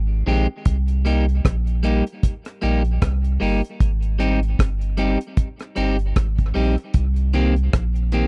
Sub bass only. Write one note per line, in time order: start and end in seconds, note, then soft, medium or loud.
0.00 0.23 G#1 loud
0.27 0.47 A#1 loud
0.66 1.41 C2 medium
1.45 2.03 A#1 medium
2.63 2.99 A#1 loud
3.02 3.38 C2 loud
3.41 3.62 G1 loud
3.81 4.55 G#1 loud
4.60 5.17 G1 medium
5.77 6.13 G1 medium
6.17 6.53 G#1 loud
6.56 6.77 A#1 loud
6.95 7.70 C2 medium
7.74 8.27 A#1 medium